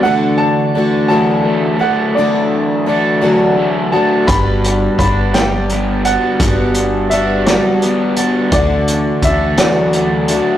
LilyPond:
<<
  \new Staff \with { instrumentName = "Grand piano" } { \time 6/8 \key g \major \tempo 4. = 57 fis''8 a''4 a''4 fis''8 | d''4 r4. a''8 | b''4 b''8 g''4 fis''8~ | fis''4 e''8 d''4 r8 |
d''4 e''8 d''4. | }
  \new Staff \with { instrumentName = "Twelve-string acoustic guitar" } { \time 6/8 \key g \major <d e a d' fis'>4 <e a d' fis'>8 <d e a d' fis'>4 <a d' fis'>8 | <d e a d' fis'>4 <e a d' fis'>8 <d e a d' fis'>4 <a d' fis'>8 | <g b d' fis'>4 <g b d' fis'>8 <g b d'>4 <b d' fis'>8 | <g b d' fis'>4 <g b d' fis'>8 <g b d' fis'>4 <b d' fis'>8 |
<d e a d' fis'>4 <e a d' fis'>8 <d e a d' fis'>4 <a d' fis'>8 | }
  \new Staff \with { instrumentName = "Overdriven electric guitar" } { \time 6/8 \key g \major d4 d'8 fis8 a8 d'8 | d4 d'8 fis8 a8 d'8 | g4 d'8 g8 b8 d'8 | g4 d'8 g8 b8 d'8 |
d4 d'8 fis8 a8 d'8 | }
  \new Staff \with { instrumentName = "Upright bass" } { \clef bass \time 6/8 \key g \major r2. | r2. | g,,4 g,,2 | g,,2 r4 |
d,4 d,2 | }
  \new DrumStaff \with { instrumentName = "Drums" } \drummode { \time 6/8 r4. r4. | r4. r4. | <hh bd>8 hh8 <hh bd>8 <hh sn>8 hh8 hh8 | <hh bd>8 hh8 hh8 <hh sn>8 hh8 hh8 |
<hh bd>8 hh8 <hh bd>8 <hh sn>8 hh8 hh8 | }
>>